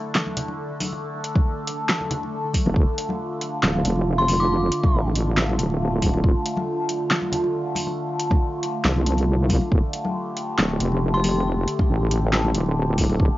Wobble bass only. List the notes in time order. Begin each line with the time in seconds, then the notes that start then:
2.66 F1
2.76 D1
3.63 D1
3.85 F1
4.93 A1
5.59 D1
6.24 D1
8.85 C2
9.72 D1
10.59 D1
10.81 F1
11.89 A1
12.54 D1
13.20 D1